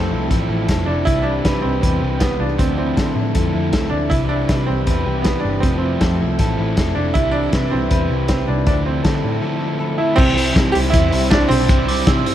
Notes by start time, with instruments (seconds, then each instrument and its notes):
Already playing: picked electric bass F2, clean electric guitar F3 E4 A4, overdriven electric guitar A3 C4 E4 A4
0.11 picked electric bass C2, clean electric guitar E4
0.29 picked electric bass A1, overdriven electric guitar F3 A3 C4 E4 A4, clean electric guitar A4, kick, closed hi-hat
0.49 picked electric bass A1, clean electric guitar E4
0.68 picked electric bass F1, clean electric guitar A4, kick, snare, closed hi-hat
0.86 picked electric bass F1, upright piano D4, clean electric guitar E4, overdriven electric guitar E4 A4
0.91 overdriven electric guitar C4
1.05 picked electric bass C2, clean electric guitar C3, overdriven electric guitar C3 E3 G3 C4 G4 B4, upright piano E4, kick, closed hi-hat
1.22 upright piano D4, clean electric guitar G4
1.44 picked electric bass C3, overdriven electric guitar G3 C4 G4 B4, clean electric guitar B4, kick, snare, closed hi-hat
1.62 picked electric bass C2, upright piano C4, clean electric guitar G4
1.81 picked electric bass E2, overdriven electric guitar C3 E3 G3 C4 G4 B4, clean electric guitar B4, kick, closed hi-hat
2.02 picked electric bass C2, clean electric guitar G4
2.20 upright piano B3, clean electric guitar B4, kick, snare, closed hi-hat
2.40 picked electric bass C2, upright piano D4, clean electric guitar F4
2.49 clean electric guitar G4
2.57 picked electric bass D2, overdriven electric guitar D3 F3 A3 C4 E4 A4, clean electric guitar D3, upright piano C4, kick, closed hi-hat
2.78 upright piano C4, clean electric guitar E4
2.97 picked electric bass D3, clean electric guitar A4, kick, snare, closed hi-hat
3.15 picked electric bass A2, clean electric guitar E4
3.35 picked electric bass F2, overdriven electric guitar D3 F3 A3 C4 E4 A4, clean electric guitar A4, kick, closed hi-hat
3.54 picked electric bass F2, clean electric guitar E4
3.73 picked electric bass D2, clean electric guitar A4, kick, snare, closed hi-hat
3.90 picked electric bass D2, upright piano D4, clean electric guitar E4
4.10 picked electric bass C2, overdriven electric guitar C3 E3 G3 C4 E4, clean electric guitar C3, upright piano E4, kick, closed hi-hat
4.14 overdriven electric guitar B4
4.29 upright piano D4, clean electric guitar G4
4.49 picked electric bass C3, clean electric guitar B4, kick, snare, closed hi-hat
4.66 picked electric bass C2, upright piano C4, clean electric guitar G4
4.87 picked electric bass E2, overdriven electric guitar C3 E3 G3 C4 E4 B4, clean electric guitar B4, kick, closed hi-hat
5.06 picked electric bass C2, clean electric guitar G4
5.22 upright piano B3, clean electric guitar B4, kick, snare, closed hi-hat
5.40 upright piano D4
5.44 picked electric bass G1, clean electric guitar G4
5.60 picked electric bass F1, overdriven electric guitar F3 A3, clean electric guitar F3, upright piano C4, kick, closed hi-hat
5.64 overdriven electric guitar C4 E4 A4
5.78 upright piano C4, clean electric guitar E4
6.01 picked electric bass F2, clean electric guitar A4, kick, snare, closed hi-hat
6.21 picked electric bass C2, clean electric guitar E4
6.38 picked electric bass A1, overdriven electric guitar F3 A3 C4 E4 A4, clean electric guitar A4, kick, closed hi-hat
6.59 picked electric bass A1, clean electric guitar E4
6.77 picked electric bass F1, clean electric guitar A4, kick, snare, closed hi-hat
6.95 picked electric bass F1, overdriven electric guitar C4 E4 A4, upright piano D4, clean electric guitar E4
7.14 picked electric bass C2, overdriven electric guitar C3 E3 G3 C4 G4 B4, clean electric guitar C3, upright piano E4, kick, closed hi-hat
7.32 upright piano D4, clean electric guitar E4
7.51 picked electric bass C3, overdriven electric guitar G3 C4 G4 B4, clean electric guitar B4, kick, snare, closed hi-hat
7.71 picked electric bass C2, upright piano C4, clean electric guitar E4
7.90 picked electric bass E2, overdriven electric guitar C3 E3 G3 C4 G4 B4, clean electric guitar B4, kick, closed hi-hat
8.10 picked electric bass C2, clean electric guitar E4
8.28 upright piano C4, clean electric guitar B4, kick, snare, closed hi-hat
8.48 picked electric bass C2, upright piano D4, clean electric guitar E4
8.67 picked electric bass D2, clean electric guitar D3, overdriven electric guitar D3 F3 A3 C4 E4 A4, upright piano D4, kick, closed hi-hat
8.86 upright piano C4, clean electric guitar E4
9.04 picked electric bass D3, overdriven electric guitar A3 C4 E4 A4, clean electric guitar A4, kick, snare, closed hi-hat
9.23 picked electric bass A2, clean electric guitar E4
9.42 overdriven electric guitar D3 F3 A3 C4 E4 A4, clean electric guitar A4
9.62 clean electric guitar E4
9.80 clean electric guitar A4
9.98 overdriven electric guitar A3 C4 E4 A4, upright piano E4, clean electric guitar E4
10.16 picked electric bass C2, overdriven electric guitar C3 E3 G3 C4 E4 C5, clean electric guitar C3, upright piano C4, kick, crash
10.35 overdriven electric guitar G3 C4 E4 C5, clean electric guitar C4, open hi-hat
10.53 overdriven electric guitar C3 E3 G3 C4 E4 C5, picked electric bass C3, clean electric guitar E4, kick, snare, hi-hat pedal, ride
10.72 picked electric bass C2, clean electric guitar C4, overdriven electric guitar C4 E4 C5, upright piano G4, open hi-hat
10.76 overdriven electric guitar G3
10.90 picked electric bass E2, overdriven electric guitar G3 C4 E4, upright piano E4, clean electric guitar E4, kick, hi-hat pedal, ride
10.94 overdriven electric guitar C5
11.11 picked electric bass C2, overdriven electric guitar G3 C4 E4 C5, clean electric guitar C4, open hi-hat
11.31 overdriven electric guitar C3 E3 G3 C4 E4 C5, upright piano D4, clean electric guitar E4, kick, snare, hi-hat pedal, ride
11.48 picked electric bass B1, overdriven electric guitar G3 C4 E4 C5, upright piano C4, clean electric guitar C5, open hi-hat
11.69 picked electric bass C2, clean electric guitar C3, overdriven electric guitar C3 E3 G3 C4 E4 C5, kick, hi-hat pedal, ride
11.87 overdriven electric guitar G3 C4 E4 C5, clean electric guitar C4, glockenspiel D6, open hi-hat
12.07 overdriven electric guitar C3 E3 G3 C4 E4 C5, picked electric bass C3, clean electric guitar E4, glockenspiel E6, kick, snare, hi-hat pedal, ride
12.25 picked electric bass G2, overdriven electric guitar G3 C4 E4 C5, clean electric guitar C4, glockenspiel E6, open hi-hat